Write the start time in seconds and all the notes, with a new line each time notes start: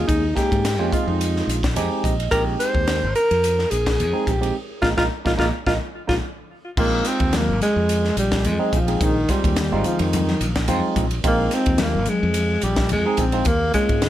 Already playing: G#3 A#3 C#4 G#4
0.08 D#2 D#4, kick, hi-hat pedal, ride
0.35 G#3 A#3 C#4 D#4 G4, kick, snare, hi-hat pedal, ride
0.52 G#2, kick, ride
0.65 snare, hi-hat pedal, ride
0.79 F2 G#3 A#3 C#4 F4
0.92 G#3 C4 D#4 F4, muted fingered electric bass stroke, kick, hi-hat pedal, ride
1.07 F2 D#4
1.21 hi-hat pedal, ride
1.36 snare
1.47 A#1, hi-hat pedal, ride
1.63 kick, snare, ride
1.75 F2 G#3 C4 D#4 G4 G#5, hi-hat pedal, ride
2.04 A#1 D#5, kick, hi-hat pedal, ride
2.20 ride
2.31 A#1 G#3 C4 D#4 G4 A#4, kick, hi-hat pedal, ride
2.60 C5, snare, hi-hat pedal, ride
2.75 D#2, kick
2.87 snare, hi-hat pedal, ride
3.03 G#1
3.15 A#4, hi-hat pedal, ride
3.31 F2, ride
3.44 hi-hat pedal, ride
3.59 snare
3.70 A#1 G#4, hi-hat pedal, ride
3.86 kick, snare, ride
4.00 F2, hi-hat pedal, ride
4.13 G#3 C4 D#4 G#4
4.27 A#1 G4, kick, hi-hat pedal, ride
4.41 G#3 C4 D#4 G4, ride
4.82 A#1 G#3 A#3 D#4 F4, kick, snare
4.97 A#1 G#3 A#3 D#4 F4, kick, snare
5.25 A#1 G#3 A#3 D#4 F4, kick, snare
5.37 A#1 G#3 A#3 D#4 F4, kick, snare
5.66 A#1 G#3 A#3 D#4 F4, kick, snare
6.07 A#1 G#3 A#3 D#4 F4, kick, snare
6.77 A#1 G#3 A#3 C4 D#4 F4, kick, crash
7.05 C4, snare, hi-hat pedal, ride
7.20 D#2, kick, ride
7.33 snare, hi-hat pedal, ride, high conga
7.37 A#3
7.49 G#1
7.61 G#3, muted fingered electric bass stroke, snare, hi-hat pedal, ride, muted conga, high conga
7.76 F2
7.89 hi-hat pedal, ride
8.05 snare
8.17 A#1 G3, hi-hat pedal, ride, muted conga
8.32 kick, snare, ride
8.44 F2 G#3, hi-hat pedal, ride, high conga
8.59 G#3 C4 D#4 G#4
8.73 A#1 F3, kick, hi-hat pedal, ride
8.87 G#3 C4 D#4 G#4, ride
9.01 A#1 D#3, kick, hi-hat pedal, ride
9.29 G3 G#3 C4 D#4 F4, kick, snare, hi-hat pedal, ride
9.44 D#2, kick, ride
9.56 snare, hi-hat pedal, ride, low conga
9.72 G#1 G#3 C4 D#4 F4
9.84 F3, hi-hat pedal, ride, muted conga, low conga
9.99 F2 D#3, ride
10.13 hi-hat pedal, ride, muted conga, high conga
10.28 snare
10.41 A#1, hi-hat pedal, ride
10.55 kick, snare, ride
10.68 F2 G#3 C4 D#4 F4, hi-hat pedal, ride, high conga
10.96 A#1, kick, hi-hat pedal, ride, high conga
11.11 ride
11.24 A#1 G#3 A#3 C4 D#4 F4, kick, hi-hat pedal, ride
11.51 C4, snare, hi-hat pedal, ride
11.66 D#2, kick, ride
11.78 snare, hi-hat pedal, ride, high conga
11.82 A#3
11.95 G#1
12.06 G#3, hi-hat pedal, ride, muted conga, high conga
12.23 F2
12.34 hi-hat pedal, ride, muted conga
12.62 A#1 G3, hi-hat pedal, ride
12.76 kick, snare, ride
12.89 F2 G#3, hi-hat pedal, ride, high conga
13.06 G#3 C4 D#4 G#4
13.17 A#1 C4, kick, hi-hat pedal, ride
13.32 G#3 C4 D#4 F4, ride
13.45 D#2 A#3, kick, hi-hat pedal, ride, muted conga
13.73 G#3 A#3 C#4 F4, kick, snare, hi-hat pedal, ride
13.89 G#2, kick, ride
14.02 snare, hi-hat pedal, ride, low conga